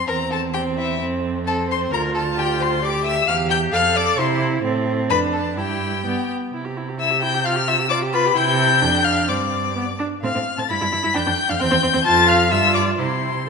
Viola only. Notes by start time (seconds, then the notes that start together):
0.09 C4
0.54 C4
1.01 C4
1.47 C4
1.92 F4
2.83 G4
3.28 G4
3.73 A4
4.18 E4
4.63 C4
5.10 D4
5.57 E4
6.06 B3
6.53 E4
6.65 G4
6.77 E4
6.89 G4
7.00 E4
7.11 G4
7.22 E4
7.34 G4
7.46 F4
7.56 G4
7.68 F4
7.79 G4
7.91 F4
8.02 G4
8.13 F4
8.25 G4
8.36 E4
8.82 D4
9.28 C4
9.75 B3
9.99 D4
10.23 C4
10.35 C4
10.58 C4
10.70 E4
10.81 E4
10.92 E4
11.03 E4
11.15 D4
11.26 D4
11.48 D4
11.60 C4
11.71 C4
11.82 C4
11.93 C4
12.05 F4
12.51 F4
12.98 E4